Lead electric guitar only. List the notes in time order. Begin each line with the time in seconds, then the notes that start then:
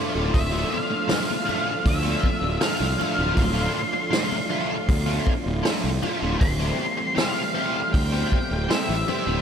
0.34 E5
0.72 F5
1.87 E5
2.62 F5
3.39 C6
6.41 C6
7.18 F5
7.93 G5
8.71 E5